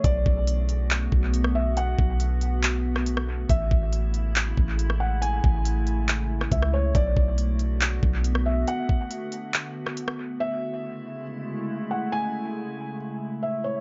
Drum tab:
HH |x---x-x-x---x---|x---x-x-x---x---|x---x-x-x---x---|x---x-x-x---x---|
CP |--------x-------|--------x-------|--------x-------|--------x-------|
SD |-------------r--|-----------r-r--|-------------r--|-----------r-r--|
BD |o-o-------o-----|--o-------------|o-o-------o-----|--o---------o---|

HH |x---x-x-x---x---|x---x-x-x---x---|----------------|----------------|
CP |--------x-------|--------x-------|----------------|----------------|
SD |-------------r--|-----------r-r--|----------------|----------------|
BD |o-o-------o-----|--o-------------|----------------|----------------|